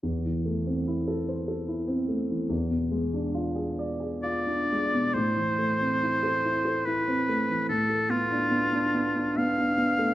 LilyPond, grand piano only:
\new Staff \with { instrumentName = "Grand piano" } { \time 3/4 \key a \minor \tempo 4 = 72 e,16 e16 a16 c'16 e'16 a'16 c''16 a'16 e'16 c'16 a16 e16 | e,16 b,16 gis16 d'16 f'16 gis'16 d''16 gis'16 f'16 d'16 gis16 b,16 | a,16 e16 a16 c'16 e'16 a'16 e'16 a'16 e'16 c'16 a16 e16 | a,16 a16 b16 d'16 b16 d'16 b16 d'16 b16 d'16 b16 a16 | }